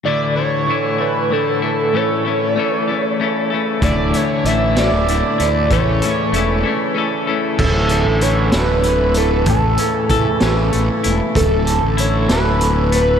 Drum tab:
CC |------|------|------|------|
HH |------|------|xxxxxx|xxx---|
SD |------|------|---o--|------|
BD |------|------|o-----|o-----|

CC |x-----|------|------|
HH |-xxxxx|xxxxxx|xxxxxx|
SD |---o--|---o--|---o--|
BD |o-----|o-o---|o-----|